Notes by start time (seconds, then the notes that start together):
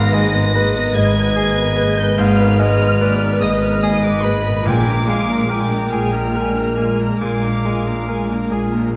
Already playing: G#1 G#2 G#3 B3 D#4 A#4 B4 C5 F5 A#6
0.13 G#3 A#3 G#4 B4 D#5
0.34 B3 A#4 B4
0.53 A#3 G#4 B4 D#5
0.75 B3 A#4 B4
0.95 G#1 G#2 A#3 G#4 B4 D#5 G#6
1.16 B3 A#4 B4
1.36 A#3 G#4 B4 D#5
1.58 B3 A#4 B4
1.77 A#3 G#4 B4 D#5
1.98 B3 A#4 B4 G6
2.17 G#1 G#2 A#3 G#4 B4 D#5 F5 F6
2.39 B3 A#4 B4
2.58 G#3 A#3 G#4 B4 D#5
2.79 B3 A#4 B4
2.99 A#3 G#4 B4 D5 D#5
3.20 B3 A#4 B4
3.40 G#1 G#2 A#3 G#4 B4 D#5 D#6
3.59 B3 A#4 B4 F6
3.80 A#3 G#4 B4 D#5 D#6
4.01 B3 B4 D6
4.05 A#4
4.22 A#3 G#4 B4 B5
4.26 B4 D#5
4.43 B3 A#4 B4
4.49 A#2
4.53 G#3
4.57 A#3
4.62 A#2 G#3 F4 A#4
4.66 A#1 A#2 G#3 G#4 A#4 G5 G#5 D6
4.84 A#3 D4 A#4 A#5
5.06 G#3 F4 G#4 F5 G#5
5.27 A#3 D4 A#4 A#5
5.47 G#3 F4 G#4 A#4 G5 G#5
5.69 A#3 D4 A#4 A#5
5.90 A#1 A#2 G#3 F4 G#4 G#5 F6
6.12 A#3 D4 A#4 A#5
6.34 G#3 F4 G#4 A#4 G#5
6.55 A#3 D4 A#4 A#5
6.77 G#3 A#3 F4 G#4 G#5
6.98 A#3 D4 A#4 A#5
7.19 A#1 A#2 G#3 F4 G#4 F5 G#5 D6
7.43 A#3 D4 A#4 A#5
7.65 G#3 F4 G#4 G#5
7.87 A#3 D4 A#4 A#5
8.07 G#3 F4 G#4 A#4 G#5
8.29 A#3 D4 A#4 A#5
8.51 A#1 A#2 G#3 F4 G#4 G#5
8.73 A#3 D4 A#4 A#5